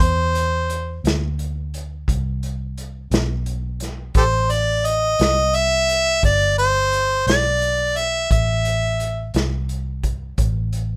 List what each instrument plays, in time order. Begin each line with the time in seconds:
0.00 fingered electric bass E2, harmonica C5, kick, closed hi-hat
0.35 closed hi-hat
0.70 closed hi-hat
1.04 fingered electric bass D2, snare, closed hi-hat
1.39 closed hi-hat
1.74 closed hi-hat
2.08 fingered electric bass C2, kick, closed hi-hat
2.43 closed hi-hat
2.78 closed hi-hat
3.11 fingered electric bass B1, snare, closed hi-hat
3.46 closed hi-hat
3.80 snare, closed hi-hat
4.15 fingered electric bass A1, harmonica G4 A4 C5, kick, closed hi-hat
4.50 harmonica D5, closed hi-hat
4.85 harmonica D#5, closed hi-hat
5.19 fingered electric bass C2, snare, closed hi-hat
5.54 harmonica E5, closed hi-hat
5.89 closed hi-hat
6.23 fingered electric bass G1, harmonica D5, kick, closed hi-hat
6.58 harmonica C5, closed hi-hat
6.92 closed hi-hat
7.27 fingered electric bass B1, harmonica D5, snare, closed hi-hat
7.61 closed hi-hat
7.96 harmonica E5, closed hi-hat
8.31 fingered electric bass A1, harmonica E5, kick, closed hi-hat
8.65 closed hi-hat
9.00 closed hi-hat
9.34 fingered electric bass C2, snare, closed hi-hat
9.69 closed hi-hat
10.03 kick, closed hi-hat
10.38 fingered electric bass A1, kick, closed hi-hat
10.73 closed hi-hat